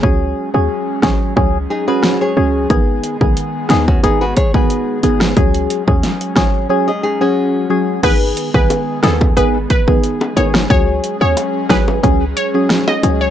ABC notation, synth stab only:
X:1
M:4/4
L:1/16
Q:1/4=90
K:G#m
V:1 name="Synth stab"
[F,CG]3 [F,CG]3 [F,CG]2 [F,CG] z2 [F,CG]3 [F,CG]2 | [D,B,G]3 [D,B,G]3 [D,B,G]2 [D,B,G] z2 [D,B,G]3 [D,B,G]2 | [F,CG]3 [F,CG]3 [F,CG]2 [F,CG] z2 [F,CG]3 [F,CG]2 | [D,B,G]3 [D,B,G]3 [D,B,G]2 [D,B,G] z2 [D,B,G]3 [D,B,G]2 |
[F,CG]3 [F,CG]3 [F,CG]2 [F,CG] z2 [F,CG]3 [F,CG]2 |]